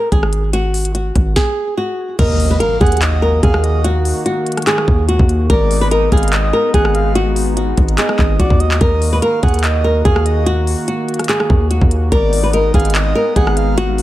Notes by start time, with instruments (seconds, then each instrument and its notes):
Already playing: nylon-string guitar A#4
0.12 808-style bass G#1, nylon-string guitar G#4, kick, closed hi-hat
0.23 cross-stick
0.33 closed hi-hat
0.53 nylon-string guitar F#4, closed hi-hat
0.74 closed hi-hat, open hi-hat
0.85 closed hi-hat
0.95 nylon-string guitar F#4, closed hi-hat
1.16 808-style bass G#1, kick, closed hi-hat
1.36 nylon-string guitar G#4, kick, snare
1.77 nylon-string guitar F#4
2.19 808-style bass D#2, analog synth pad D#3 A#3 F#4, nylon-string guitar A#4, soft synth lead D#5, kick, closed hi-hat, crash, impact
2.40 open hi-hat
2.51 nylon-string guitar B4
2.60 nylon-string guitar A#4, soft synth lead F5, closed hi-hat
2.81 808-style bass D#2, nylon-string guitar G#4, soft synth lead F#5, kick, closed hi-hat
2.86 closed hi-hat
2.92 closed hi-hat
2.97 closed hi-hat
3.02 soft synth lead D#5, clap, closed hi-hat
3.22 nylon-string guitar A#4
3.43 808-style bass D#2, nylon-string guitar G#4, soft synth lead F5, kick, closed hi-hat
3.54 cross-stick
3.64 soft synth lead D#5, closed hi-hat
3.84 nylon-string guitar F#4, closed hi-hat
4.05 open hi-hat
4.26 nylon-string guitar F#4, closed hi-hat
4.46 closed hi-hat
4.52 closed hi-hat
4.57 cross-stick, closed hi-hat
4.62 closed hi-hat
4.67 nylon-string guitar G#4, clap, closed hi-hat
4.78 cross-stick
4.88 808-style bass D#2, kick
5.08 nylon-string guitar F#4, closed hi-hat
5.19 808-style bass D#2, kick
5.29 closed hi-hat
5.50 808-style bass G#1, analog synth pad G#3 B3 D#4, nylon-string guitar A#4, soft synth lead D5, kick, closed hi-hat
5.71 open hi-hat
5.81 nylon-string guitar B4
5.91 nylon-string guitar A#4, soft synth lead D#5, closed hi-hat
6.12 808-style bass G#1, nylon-string guitar G#4, soft synth lead F5, kick, closed hi-hat
6.17 closed hi-hat
6.23 closed hi-hat
6.28 closed hi-hat
6.33 soft synth lead D#5, clap, closed hi-hat
6.53 nylon-string guitar A#4
6.74 808-style bass G#1, nylon-string guitar G#4, soft synth lead F#5, kick, closed hi-hat
6.85 cross-stick
6.95 soft synth lead F5, closed hi-hat
7.15 nylon-string guitar F#4, closed hi-hat
7.36 open hi-hat
7.57 nylon-string guitar F#4, closed hi-hat
7.77 808-style bass G#1, kick, closed hi-hat
7.88 closed hi-hat
7.98 nylon-string guitar G#4, soft synth lead D#5, clap, closed hi-hat
8.09 cross-stick
8.19 808-style bass G#1, kick, clap
8.40 808-style bass G#1, nylon-string guitar F#4, soft synth lead D5, kick, closed hi-hat
8.50 808-style bass D#2, kick
8.60 soft synth lead D#5, closed hi-hat
8.71 clap
8.81 808-style bass D#2, analog synth pad D#3 A#3 F#4, nylon-string guitar A#4, soft synth lead D#5, kick, closed hi-hat
9.02 open hi-hat
9.13 nylon-string guitar B4
9.22 nylon-string guitar A#4, soft synth lead F5, closed hi-hat
9.43 808-style bass D#2, nylon-string guitar G#4, soft synth lead F#5, kick, closed hi-hat
9.48 closed hi-hat
9.54 closed hi-hat
9.59 closed hi-hat
9.64 soft synth lead D#5, clap, closed hi-hat
9.84 nylon-string guitar A#4
10.05 808-style bass D#2, nylon-string guitar G#4, soft synth lead F5, kick, closed hi-hat
10.16 cross-stick
10.26 soft synth lead D#5, closed hi-hat
10.46 nylon-string guitar F#4, closed hi-hat
10.67 open hi-hat
10.88 nylon-string guitar F#4, closed hi-hat
11.09 closed hi-hat
11.14 closed hi-hat
11.19 cross-stick, closed hi-hat
11.24 closed hi-hat
11.29 nylon-string guitar G#4, clap, closed hi-hat
11.40 cross-stick
11.50 808-style bass D#2, kick
11.71 nylon-string guitar F#4, closed hi-hat
11.81 808-style bass D#2, kick
11.91 closed hi-hat
12.12 808-style bass G#1, analog synth pad G#3 B3 D#4, nylon-string guitar A#4, soft synth lead D5, kick, closed hi-hat
12.33 open hi-hat
12.43 nylon-string guitar B4
12.53 nylon-string guitar A#4, soft synth lead D#5, closed hi-hat
12.74 808-style bass G#1, nylon-string guitar G#4, soft synth lead F5, kick, closed hi-hat
12.80 closed hi-hat
12.85 closed hi-hat
12.90 closed hi-hat
12.95 soft synth lead D#5, clap, closed hi-hat
13.15 nylon-string guitar A#4
13.36 808-style bass G#1, nylon-string guitar G#4, soft synth lead F#5, kick, closed hi-hat
13.47 cross-stick
13.57 soft synth lead F5, closed hi-hat
13.78 nylon-string guitar F#4, closed hi-hat
13.98 open hi-hat